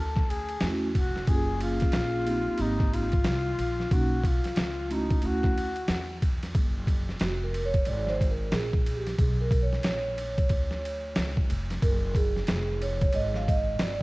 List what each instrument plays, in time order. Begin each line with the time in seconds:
Already playing: upright bass D2, flugelhorn A4
0.16 kick, snare
0.30 flugelhorn G#4, ride
0.49 ride
0.60 upright bass E2, vibraphone A3 C#4 E4 F#4, snare, hi-hat pedal, ride
0.95 upright bass F1, flugelhorn F#4, kick, ride
1.16 snare
1.27 upright bass F#1, vibraphone A#3 C#4 F4 G4, flugelhorn G#4, kick, ride
1.35 vibraphone G#4
1.60 flugelhorn F4, ride
1.80 kick, snare, ride
1.92 upright bass A#1, snare, hi-hat pedal, ride
2.25 vibraphone A#3 C4 D#4 G4, ride
2.47 muted upright bass stroke
2.58 upright bass G#1, vibraphone A#3 C4 D#4 G4, flugelhorn D#4, ride
2.79 kick, snare
2.93 flugelhorn F4, ride
3.12 kick, ride
3.24 upright bass C2, snare, hi-hat pedal, ride
3.58 upright bass A#1, ride
3.80 snare
3.90 upright bass B1, vibraphone A#3 C#4 D#4 F#4, flugelhorn F#4, kick, ride
4.24 flugelhorn F4, kick, ride
4.44 snare, ride
4.56 upright bass C#2, snare, hi-hat pedal, ride
4.89 vibraphone A3 C#4 E4 F#4, flugelhorn D#4, ride
5.10 muted upright bass stroke, kick, ride
5.22 upright bass D2, vibraphone A3 C#4 E4 F#4, flugelhorn F#4, ride
5.43 kick, snare
5.58 ride
5.76 ride
5.88 upright bass E2, snare, hi-hat pedal, ride
6.22 kick, ride
6.43 snare, ride
6.55 upright bass F#1, kick, ride
6.87 kick, ride
7.09 snare
7.20 upright bass F1, vibraphone F#4, snare, hi-hat pedal, ride
7.43 vibraphone A#4
7.54 ride
7.65 vibraphone C#5
7.74 kick, ride
7.85 upright bass G#1, vibraphone D5, ride
8.07 vibraphone C5, snare
8.21 kick, ride
8.31 vibraphone A#4
8.52 upright bass A#1, vibraphone G#4, snare, hi-hat pedal, ride
8.73 kick
8.86 ride
8.97 vibraphone G4
9.06 snare, ride
9.19 upright bass B1, vibraphone G#4, kick, ride
9.41 vibraphone A#4
9.51 kick, ride
9.62 vibraphone C#5
9.73 snare
9.83 snare, hi-hat pedal, ride
10.18 ride
10.38 kick, ride
10.49 upright bass D2, kick, ride
10.71 snare
10.85 ride
11.16 upright bass C#2, snare, hi-hat pedal, ride
11.37 kick
11.49 upright bass F1, ride
11.70 snare, ride
11.82 upright bass F#1, vibraphone A#4, kick, ride
12.15 vibraphone G#4, kick, ride
12.36 snare
12.47 upright bass F1, snare, hi-hat pedal, ride
12.82 vibraphone C#5, ride
13.01 kick, ride
13.13 upright bass G#1, vibraphone D#5, ride
13.34 vibraphone F5, snare
13.48 vibraphone D#5, kick, ride
13.79 upright bass G1, vibraphone D5, snare, hi-hat pedal, ride